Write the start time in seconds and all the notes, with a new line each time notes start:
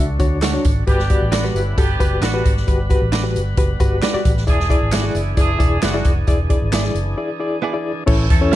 Already playing: C#2 D3 D4 F#4
0.19 D2 D4 F#4 C#5, kick, closed hi-hat, tambourine
0.42 A3 D4 F#4 C#5, snare, clap, closed hi-hat, tambourine
0.53 D4 F#4 C#5
0.64 G#1, kick, closed hi-hat, tambourine
0.87 G1 G3 B3 D4 F#4 G4 B4, kick, closed hi-hat
0.99 snare
1.10 F#4 G4 D5, kick, closed hi-hat, tambourine
1.21 A1
1.32 B3 D4 F#4 B4 D5, snare, clap, closed hi-hat, tambourine
1.44 F#4 G4 B4, snare
1.54 G1 A3 C#4 E4, closed hi-hat, tambourine
1.77 G1 B3 D4 F#4 G4 A4, kick, closed hi-hat, tambourine
2.00 F#1 F#4 G4 B4, kick, closed hi-hat, tambourine
2.21 A1 B3 D4 F#4 B4 D5, snare, clap, closed hi-hat, tambourine
2.33 F#4 G4 B4
2.45 G#1, kick, closed hi-hat, tambourine
2.57 snare
2.67 G1 F#4 G4 B4, kick, closed hi-hat, tambourine
2.90 F#4 G4 B4, kick, closed hi-hat, tambourine
3.01 A1
3.12 D4 F#4 B4 D5, snare, clap, closed hi-hat, tambourine
3.23 F#4 G4 B4
3.35 G1, closed hi-hat, tambourine
3.57 F#1 F#4 G4 B4, kick, closed hi-hat, tambourine
3.80 G1 F#4 G4 B4, kick, closed hi-hat, tambourine
4.02 D4 F#4 B4 D5, snare, clap, closed hi-hat, tambourine
4.13 F#4 G4 D5, muted fingered electric bass stroke
4.25 A1, kick, closed hi-hat, tambourine
4.37 snare
4.47 E1 E3 D4 E4 G#4 D5, kick, closed hi-hat, tambourine
4.60 snare
4.70 E4 G#4 D5, kick, closed hi-hat, tambourine
4.81 G#1
4.92 B3 D4 E4 F#4 G#4 D5, snare, clap, closed hi-hat, tambourine
5.04 E4 G#4 D5
5.15 F#1 G#3 B3 E4, closed hi-hat, tambourine
5.37 F#1 D4 E4 G#4 D5, kick, closed hi-hat, tambourine
5.59 E1 E4 G#4 D5, kick, closed hi-hat, tambourine
5.82 F#1 B3 D4 E4 F#4 G#4 D5, snare, clap, closed hi-hat, tambourine
5.94 E4 G#4 D5
6.05 F1, kick, closed hi-hat, tambourine
6.27 E1 E4 G#4 D5, kick, closed hi-hat, tambourine
6.50 E4 G#4 D5, kick, closed hi-hat
6.62 G#1
6.72 B3 E4 G#4 D5, snare, clap, closed hi-hat, tambourine
6.83 E4 G#4 D5, snare
6.95 F#1, closed hi-hat, tambourine
7.17 E4 G#4 D5
7.40 E4 G#4 D5
7.62 B3 E4 G#4 D5
7.73 E4 G#4 D5
8.06 A1 E3 C#4 E4 A4 C#5, kick, crash
8.30 E2 C#4 E4 A4, kick, closed hi-hat
8.41 C#4 E4 A4 C#5
8.52 C#4, closed hi-hat